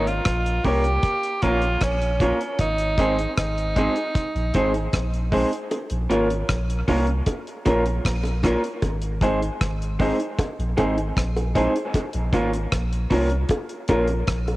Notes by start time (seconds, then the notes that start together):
Already playing: G#1
0.07 F4, closed hi-hat
0.25 A#1, kick, cross-stick, closed hi-hat
0.46 closed hi-hat
0.64 C2 A#3 C#4 F4 G4 A#4 C#5, kick, open hi-hat
0.84 closed hi-hat
1.03 kick, closed hi-hat
1.23 closed hi-hat
1.42 A#1 A#3 C#4 F4 A#4 C#5, kick, closed hi-hat
1.62 muted clean electric guitar stroke, closed hi-hat
1.81 A#1 C#4, kick, cross-stick, closed hi-hat
2.02 closed hi-hat
2.20 A#3 C#4 F4 A#4 C#5, kick, closed hi-hat
2.41 closed hi-hat
2.59 G#1 D#4, kick, closed hi-hat
2.78 closed hi-hat
2.98 G#3 C4 D#4 G#4 C5, kick, closed hi-hat
3.19 closed hi-hat
3.37 G#1 D#4, kick, cross-stick, closed hi-hat
3.58 closed hi-hat
3.76 G#3 C4 D#4 G#4 C5, kick, closed hi-hat
3.96 closed hi-hat
4.15 kick, closed hi-hat
4.35 A#1, closed hi-hat
4.54 G#1 G#3 C4 D#4 G#4 C5, kick, closed hi-hat
4.74 muted clean electric guitar stroke, closed hi-hat
4.93 A#1, kick, cross-stick, closed hi-hat
5.14 closed hi-hat
5.32 G#3 C4 D#4 G#4 C5, kick, open hi-hat
5.53 closed hi-hat
5.71 closed hi-hat, high bongo
5.90 A#1, closed hi-hat
6.10 G#1 A#3 C#4 F4 A#4 C#5, closed hi-hat
6.30 closed hi-hat
6.49 A#1, kick, cross-stick, closed hi-hat
6.70 closed hi-hat
6.88 C2 A#3 C#4 F4 A#4 C#5, kick, open hi-hat, low bongo
7.07 closed hi-hat
7.26 kick, closed hi-hat, high bongo
7.47 closed hi-hat
7.66 A#1 A#3 C#4 F4 A#4 C#5, kick, closed hi-hat, high bongo
7.86 muted clean electric guitar stroke, closed hi-hat
8.05 A#1, kick, cross-stick, closed hi-hat
8.24 closed hi-hat, high bongo
8.43 A#3 C#4 F4 A#4 C#5, kick, cross-stick, closed hi-hat, low bongo
8.64 closed hi-hat
8.82 G#1, kick, closed hi-hat, high bongo
9.02 closed hi-hat
9.21 G#3 C4 D#4 G#4 C5, kick, closed hi-hat
9.43 closed hi-hat
9.61 G#1, kick, cross-stick, closed hi-hat
9.82 closed hi-hat
9.99 G#3 C4 D#4 G#4 C5, kick, open hi-hat, low bongo
10.20 closed hi-hat
10.38 kick, closed hi-hat, high bongo
10.59 A#1, closed hi-hat
10.77 G#1 G#3 C4 D#4 G#4 C5, kick, closed hi-hat, high bongo
10.97 muted clean electric guitar stroke, closed hi-hat
11.17 A#1, kick, cross-stick, closed hi-hat
11.36 closed hi-hat, high bongo
11.55 G#3 C4 D#4 G#4 C5, kick, closed hi-hat, low bongo
11.76 closed hi-hat
11.94 kick, closed hi-hat, high bongo
12.13 A#1, closed hi-hat
12.33 G#1 A#3 C#4 F4 A#4 C#5, kick, closed hi-hat
12.54 closed hi-hat
12.72 A#1, kick, cross-stick, closed hi-hat
12.93 closed hi-hat
13.10 C2 A#3 C#4 F4 A#4 C#5, kick, open hi-hat, low bongo
13.30 closed hi-hat
13.49 kick, closed hi-hat, high bongo
13.70 closed hi-hat
13.88 A#1 A#3 C#4 F4 A#4 C#5, kick, closed hi-hat, high bongo
14.08 muted clean electric guitar stroke, closed hi-hat
14.27 A#1, kick, cross-stick, closed hi-hat
14.48 closed hi-hat, high bongo